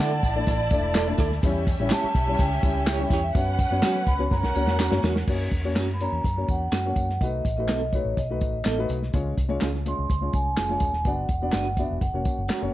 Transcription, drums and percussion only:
0.23 kick medium
0.23 closed hi-hat medium
0.23 tambourine soft
0.47 kick loud
0.47 closed hi-hat medium
0.47 tambourine soft
0.71 kick loud
0.71 closed hi-hat medium
0.71 tambourine medium
0.95 snare loud
0.95 clap loud
0.95 closed hi-hat medium
0.95 tambourine loud
1.18 kick medium
1.18 closed hi-hat medium
1.18 tambourine medium
1.32 snare soft
1.43 kick loud
1.43 closed hi-hat loud
1.43 tambourine medium
1.67 kick loud
1.67 closed hi-hat medium
1.67 tambourine medium
1.90 snare loud
1.90 clap medium
1.90 closed hi-hat medium
1.90 tambourine medium
2.15 kick medium
2.15 closed hi-hat medium
2.38 kick medium
2.38 closed hi-hat loud
2.38 tambourine soft
2.63 kick loud
2.63 closed hi-hat medium
2.63 tambourine medium
2.87 snare loud
2.87 clap loud
2.87 closed hi-hat loud
2.87 tambourine loud
3.10 kick loud
3.10 closed hi-hat medium
3.10 tambourine medium
3.35 kick loud
3.35 closed hi-hat medium
3.35 tambourine medium
3.59 kick medium
3.59 closed hi-hat medium
3.59 tambourine medium
3.82 snare loud
3.82 clap loud
3.82 closed hi-hat loud
3.82 tambourine medium
3.95 snare soft
4.07 kick medium
4.07 closed hi-hat medium
4.31 kick medium
4.31 snare medium
4.31 tambourine soft
4.43 snare medium
4.56 tambourine medium
4.67 snare medium
4.79 snare medium
4.79 clap loud
4.79 tambourine loud
4.92 snare medium
5.04 snare loud
5.04 tambourine soft
5.16 snare medium
5.28 kick loud
5.28 crash medium
5.28 tambourine soft
5.52 kick medium
5.52 closed hi-hat medium
5.52 tambourine soft
5.75 snare loud
5.75 clap medium
5.75 closed hi-hat medium
5.75 tambourine medium
5.89 snare soft
6.00 closed hi-hat medium
6.00 tambourine soft
6.24 kick medium
6.24 closed hi-hat medium
6.24 tambourine soft
6.48 kick medium
6.48 closed hi-hat medium
6.48 tambourine soft
6.72 snare loud
6.72 clap medium
6.72 closed hi-hat medium
6.72 tambourine medium
6.96 kick medium
6.96 closed hi-hat medium
6.96 tambourine soft
7.09 snare soft
7.21 kick loud
7.21 closed hi-hat medium
7.21 tambourine soft
7.45 kick medium
7.45 closed hi-hat medium
7.45 tambourine soft
7.68 snare loud
7.68 clap medium
7.68 closed hi-hat medium
7.68 tambourine medium
7.93 kick medium
7.93 closed hi-hat medium
7.93 tambourine soft
8.17 kick medium
8.17 closed hi-hat medium
8.17 tambourine soft
8.41 kick medium
8.41 closed hi-hat medium
8.41 tambourine medium
8.65 snare loud
8.65 clap medium
8.65 closed hi-hat medium
8.65 tambourine loud
8.89 closed hi-hat medium
8.89 tambourine soft
9.02 snare soft
9.13 kick loud
9.13 closed hi-hat medium
9.13 tambourine soft
9.37 kick medium
9.37 closed hi-hat medium
9.37 tambourine medium
9.61 snare loud
9.61 clap medium
9.61 closed hi-hat medium
9.61 tambourine medium
9.75 snare soft
9.86 closed hi-hat medium
9.86 tambourine soft
10.09 kick medium
10.09 closed hi-hat medium
10.09 tambourine soft
10.33 kick loud
10.33 closed hi-hat medium
10.33 tambourine medium
10.57 snare loud
10.57 clap medium
10.57 closed hi-hat medium
10.57 tambourine loud
10.80 kick medium
10.80 closed hi-hat medium
10.80 tambourine soft
10.93 snare soft
11.05 kick loud
11.05 closed hi-hat medium
11.05 tambourine medium
11.29 kick medium
11.29 closed hi-hat medium
11.29 tambourine soft
11.52 snare loud
11.52 clap medium
11.52 closed hi-hat medium
11.52 tambourine medium
11.77 kick medium
11.77 closed hi-hat medium
11.77 tambourine soft
12.01 kick medium
12.01 closed hi-hat medium
12.25 kick loud
12.25 closed hi-hat medium
12.25 tambourine soft
12.50 snare loud
12.50 clap loud
12.50 closed hi-hat medium
12.50 tambourine medium

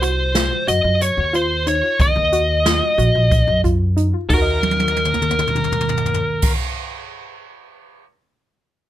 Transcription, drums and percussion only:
0.02 closed hi-hat medium
0.35 snare loud
0.35 closed hi-hat medium
0.68 closed hi-hat medium
1.01 closed hi-hat medium
1.34 closed hi-hat medium
1.67 closed hi-hat medium
2.00 kick medium
2.00 closed hi-hat medium
2.33 closed hi-hat medium
2.66 snare medium
2.66 closed hi-hat medium
2.99 closed hi-hat medium
3.31 kick loud
3.31 closed hi-hat medium
3.64 kick medium
3.64 closed hi-hat medium
3.97 closed hi-hat medium
4.30 kick medium
4.30 crash medium
4.63 high tom soft
4.71 high tom soft
4.80 high tom soft
4.88 high tom soft
4.96 high tom soft
5.05 mid tom medium
5.14 mid tom medium
5.22 mid tom medium
5.30 mid tom medium
5.39 mid tom medium
5.47 mid tom medium
5.55 mid tom medium
5.64 mid tom medium
5.72 mid tom medium
5.80 mid tom medium
5.89 floor tom medium
5.97 floor tom medium
6.06 floor tom medium
6.14 floor tom medium
6.42 kick loud
6.42 crash medium

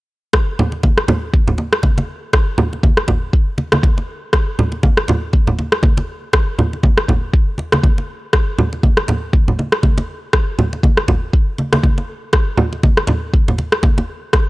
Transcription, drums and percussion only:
0.33 kick loud
0.33 cross-stick medium
0.33 muted conga soft
0.59 low conga loud
0.72 muted conga soft
0.83 kick loud
0.83 high conga medium
0.98 cross-stick medium
1.08 muted conga soft
1.08 low conga loud
1.34 kick loud
1.34 high conga medium
1.48 low conga medium
1.58 muted conga soft
1.58 high conga medium
1.73 cross-stick medium
1.83 kick loud
1.83 high conga medium
1.98 muted conga soft
1.98 high conga medium
2.33 kick loud
2.33 cross-stick medium
2.33 muted conga soft
2.58 low conga loud
2.73 muted conga soft
2.83 kick loud
2.83 high conga loud
2.97 cross-stick medium
3.08 kick medium
3.08 muted conga medium
3.08 low conga medium
3.33 kick loud
3.58 muted conga soft
3.58 high conga medium
3.72 cross-stick medium
3.72 high conga medium
3.83 kick loud
3.83 high conga medium
3.98 muted conga soft
4.33 kick loud
4.33 cross-stick medium
4.33 muted conga soft
4.59 low conga loud
4.72 muted conga soft
4.83 kick loud
4.83 high conga loud
4.97 cross-stick medium
5.08 muted conga soft
5.08 low conga medium
5.33 kick loud
5.33 high conga medium
5.47 low conga medium
5.59 muted conga soft
5.59 high conga medium
5.72 cross-stick medium
5.83 kick loud
5.83 high conga medium
5.97 muted conga soft
5.97 high conga medium
6.33 kick loud
6.33 cross-stick medium
6.33 muted conga soft
6.59 low conga medium
6.73 muted conga soft
6.83 kick loud
6.83 high conga loud
6.98 cross-stick medium
7.08 kick medium
7.08 muted conga soft
7.08 low conga medium
7.33 kick loud
7.58 muted conga soft
7.58 high conga medium
7.72 cross-stick medium
7.72 high conga medium
7.83 kick loud
7.83 high conga medium
7.98 muted conga soft
8.33 kick loud
8.33 cross-stick medium
8.33 muted conga soft
8.59 low conga medium
8.73 muted conga soft
8.83 kick loud
8.83 high conga medium
8.97 cross-stick medium
9.08 muted conga soft
9.08 low conga medium
9.33 kick loud
9.33 high conga medium
9.48 low conga medium
9.59 muted conga soft
9.59 high conga medium
9.72 cross-stick medium
9.83 kick loud
9.83 high conga medium
9.98 muted conga soft
9.98 high conga medium
10.33 kick loud
10.33 cross-stick medium
10.33 muted conga soft
10.59 low conga medium
10.73 muted conga soft
10.83 kick loud
10.83 high conga medium
10.97 cross-stick medium
11.08 kick medium
11.08 muted conga medium
11.08 low conga loud
11.33 kick loud
11.58 muted conga soft
11.58 high conga medium
11.73 cross-stick medium
11.73 high conga loud
11.83 kick loud
11.83 high conga medium
11.98 muted conga soft
12.33 kick loud
12.33 cross-stick medium
12.33 muted conga soft
12.57 low conga loud
12.73 muted conga soft
12.83 kick loud
12.83 high conga medium
12.97 cross-stick medium
13.07 muted conga medium
13.07 low conga medium
13.34 kick loud
13.34 high conga soft
13.48 low conga medium
13.58 muted conga soft
13.58 high conga medium
13.72 cross-stick medium
13.83 kick loud
13.83 high conga medium
13.98 muted conga soft
13.98 high conga medium
14.33 kick loud
14.33 cross-stick medium
14.33 muted conga medium

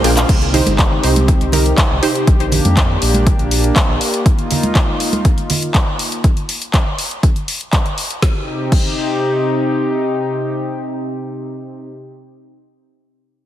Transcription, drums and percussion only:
0.04 open hi-hat loud
0.04 ride medium
0.17 clap medium
0.17 closed hi-hat medium
0.17 high bongo medium
0.17 shaker medium
0.29 kick loud
0.29 closed hi-hat medium
0.29 crash medium
0.42 closed hi-hat soft
0.54 open hi-hat loud
0.54 low conga medium
0.66 closed hi-hat medium
0.66 high conga medium
0.79 kick loud
0.79 clap loud
0.79 closed hi-hat medium
1.03 open hi-hat loud
1.16 closed hi-hat medium
1.16 high conga medium
1.28 kick loud
1.28 closed hi-hat medium
1.41 closed hi-hat soft
1.52 open hi-hat loud
1.52 low conga medium
1.66 closed hi-hat medium
1.78 kick loud
1.78 clap loud
1.78 closed hi-hat medium
2.03 open hi-hat loud
2.15 closed hi-hat medium
2.27 kick loud
2.27 closed hi-hat medium
2.40 closed hi-hat soft
2.52 open hi-hat loud
2.52 low conga medium
2.65 closed hi-hat medium
2.65 high conga medium
2.77 kick loud
2.77 clap loud
2.77 closed hi-hat medium
3.02 open hi-hat loud
3.14 closed hi-hat soft
3.14 high conga medium
3.27 kick loud
3.27 closed hi-hat medium
3.39 closed hi-hat soft
3.51 open hi-hat loud
3.64 closed hi-hat soft
3.76 kick loud
3.76 clap loud
3.76 closed hi-hat medium
4.01 open hi-hat loud
4.14 closed hi-hat medium
4.26 kick loud
4.26 closed hi-hat medium
4.39 closed hi-hat soft
4.51 open hi-hat loud
4.51 low conga medium
4.63 closed hi-hat medium
4.63 high conga medium
4.75 kick loud
4.75 clap loud
4.75 closed hi-hat medium
5.00 open hi-hat loud
5.13 closed hi-hat soft
5.13 high conga medium
5.25 kick loud
5.25 closed hi-hat medium
5.38 closed hi-hat soft
5.50 open hi-hat loud
5.50 low conga medium
5.62 closed hi-hat soft
5.75 kick loud
5.75 clap loud
5.75 closed hi-hat medium
5.99 open hi-hat loud
6.12 closed hi-hat soft
6.24 kick loud
6.24 closed hi-hat medium
6.37 closed hi-hat soft
6.49 open hi-hat loud
6.62 closed hi-hat soft
6.74 kick loud
6.74 clap loud
6.74 closed hi-hat medium
6.99 open hi-hat loud
7.11 closed hi-hat soft
7.23 kick loud
7.23 closed hi-hat medium
7.36 closed hi-hat soft
7.48 open hi-hat loud
7.61 closed hi-hat soft
7.73 kick medium
7.73 clap loud
7.73 closed hi-hat medium
7.86 closed hi-hat soft
7.98 open hi-hat medium
8.10 closed hi-hat soft
8.22 kick loud
8.22 snare medium
8.72 kick loud
8.72 crash medium

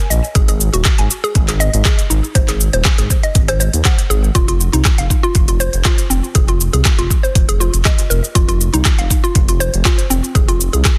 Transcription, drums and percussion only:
0.11 shaker loud
0.24 shaker soft
0.35 kick loud
0.35 closed hi-hat medium
0.35 shaker medium
0.48 closed hi-hat soft
0.48 shaker soft
0.61 shaker medium
0.74 closed hi-hat soft
0.74 shaker soft
0.85 kick loud
0.85 cross-stick loud
0.85 clap loud
0.85 closed hi-hat medium
0.85 shaker medium
0.98 closed hi-hat soft
1.11 shaker loud
1.24 shaker soft
1.35 kick loud
1.35 closed hi-hat medium
1.35 shaker soft
1.48 clap soft
1.48 closed hi-hat soft
1.48 shaker soft
1.61 shaker medium
1.74 closed hi-hat soft
1.74 shaker soft
1.85 kick loud
1.85 cross-stick loud
1.85 clap loud
1.85 closed hi-hat medium
1.85 shaker medium
1.99 closed hi-hat soft
1.99 shaker soft
2.11 shaker medium
2.24 shaker soft
2.35 kick loud
2.35 closed hi-hat medium
2.35 shaker medium
2.48 clap soft
2.48 closed hi-hat soft
2.48 shaker soft
2.61 shaker medium
2.73 closed hi-hat soft
2.73 shaker soft
2.85 kick loud
2.85 cross-stick loud
2.85 clap loud
2.85 closed hi-hat medium
2.85 shaker medium
2.98 closed hi-hat soft
2.98 shaker soft
3.10 kick medium
3.10 shaker medium
3.23 closed hi-hat soft
3.23 shaker soft
3.35 kick loud
3.35 closed hi-hat medium
3.35 shaker medium
3.48 cross-stick medium
3.48 closed hi-hat soft
3.48 shaker soft
3.61 shaker medium
3.73 closed hi-hat soft
3.73 shaker soft
3.85 kick loud
3.85 cross-stick loud
3.85 clap loud
3.85 closed hi-hat medium
3.85 shaker medium
3.99 closed hi-hat soft
3.99 shaker soft
4.11 shaker medium
4.24 shaker soft
4.35 kick loud
4.35 closed hi-hat medium
4.35 shaker medium
4.48 closed hi-hat soft
4.48 shaker soft
4.61 shaker medium
4.73 closed hi-hat soft
4.73 shaker soft
4.85 kick loud
4.85 cross-stick loud
4.85 clap loud
4.85 closed hi-hat medium
4.85 shaker medium
4.98 closed hi-hat soft
5.10 kick medium
5.10 shaker loud
5.24 shaker soft
5.35 kick loud
5.35 closed hi-hat medium
5.35 shaker medium
5.48 closed hi-hat soft
5.48 shaker soft
5.60 shaker medium
5.73 closed hi-hat soft
5.73 shaker soft
5.85 kick loud
5.85 cross-stick loud
5.85 clap loud
5.85 closed hi-hat medium
5.85 shaker medium
5.98 closed hi-hat soft
5.98 shaker soft
6.11 shaker medium
6.24 shaker soft
6.35 kick loud
6.35 closed hi-hat medium
6.35 shaker medium
6.48 closed hi-hat soft
6.48 shaker soft
6.61 shaker loud
6.73 closed hi-hat soft
6.73 shaker soft
6.85 kick loud
6.85 cross-stick loud
6.85 clap loud
6.85 closed hi-hat medium
6.85 shaker medium
6.99 closed hi-hat soft
7.10 kick medium
7.10 shaker loud
7.24 shaker soft
7.35 kick loud
7.35 closed hi-hat medium
7.35 shaker medium
7.49 closed hi-hat soft
7.49 shaker soft
7.61 shaker loud
7.74 closed hi-hat soft
7.74 shaker soft
7.85 kick loud
7.85 cross-stick loud
7.85 clap loud
7.85 closed hi-hat medium
7.85 shaker medium
7.98 closed hi-hat soft
7.98 shaker soft
8.11 shaker loud
8.24 shaker soft
8.35 kick loud
8.35 closed hi-hat medium
8.35 shaker medium
8.49 closed hi-hat soft
8.49 shaker soft
8.61 shaker loud
8.74 closed hi-hat soft
8.74 shaker soft
8.85 kick loud
8.85 cross-stick loud
8.85 clap loud
8.85 closed hi-hat medium
8.85 shaker medium
8.98 closed hi-hat soft
9.10 kick medium
9.10 shaker loud
9.24 shaker soft
9.35 kick loud
9.35 closed hi-hat medium
9.35 shaker medium
9.48 closed hi-hat soft
9.48 shaker soft
9.61 shaker medium
9.74 closed hi-hat soft
9.74 shaker soft
9.85 kick loud
9.85 cross-stick loud
9.85 clap loud
9.85 closed hi-hat medium
9.85 shaker medium
9.99 closed hi-hat soft
9.99 shaker soft
10.11 shaker loud
10.24 shaker soft
10.35 kick loud
10.35 closed hi-hat medium
10.35 shaker medium
10.49 closed hi-hat soft
10.49 shaker soft
10.61 shaker loud
10.73 closed hi-hat soft
10.73 shaker soft
10.85 kick loud
10.85 cross-stick loud
10.85 clap loud
10.85 closed hi-hat medium
10.85 shaker medium

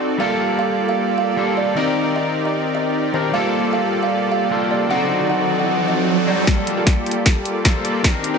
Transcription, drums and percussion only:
6.47 kick medium
6.47 snare soft
6.47 closed hi-hat medium
6.67 closed hi-hat medium
6.87 kick medium
6.87 snare soft
6.87 closed hi-hat medium
7.06 closed hi-hat soft
7.11 closed hi-hat medium
7.26 kick medium
7.26 snare soft
7.26 closed hi-hat medium
7.45 closed hi-hat medium
7.65 kick medium
7.65 snare soft
7.65 closed hi-hat medium
7.85 closed hi-hat medium
8.04 kick loud
8.04 snare soft
8.04 closed hi-hat medium
8.24 closed hi-hat medium

